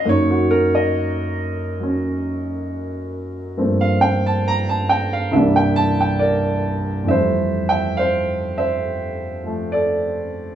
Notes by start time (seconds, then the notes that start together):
0.05 F#2 F#3 A#3 D#4
0.09 C#5
0.31 F#4
0.51 A#4
0.75 D#5
1.80 F#3 C#4
3.57 G2 F3 A3 A#3 C4
3.81 F5
4.01 G5
4.26 A5
4.48 A#5
4.69 A5
4.89 G5
5.13 F5
5.31 C2 G2 E3 G3 A#3 E5
5.36 D4
5.56 G5
5.76 A5
6.01 G5
6.19 A#4 D5
7.04 F2 E3
7.08 G3 C5 E5
7.15 A3
7.69 E5 G5
7.97 C5 F5
8.58 C5 E5
9.44 F3 A3
9.72 A4 D5